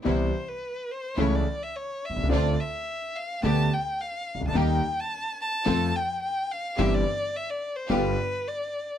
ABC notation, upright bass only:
X:1
M:4/4
L:1/16
Q:1/4=107
K:C
V:1 name="Upright bass" clef=bass
C,,3/2 z6 z/2 ^C,,3/2 z4 z B,,,/2 =C,,/2 ^C,,/2 | D,,3/2 z6 z/2 D,,3/2 z4 z C,,/2 _D,,/2 =D,,/2 | _E,,3/2 z6 z/2 F,,3/2 z6 z/2 | G,,,3/2 z6 z/2 G,,,3/2 z6 z/2 |]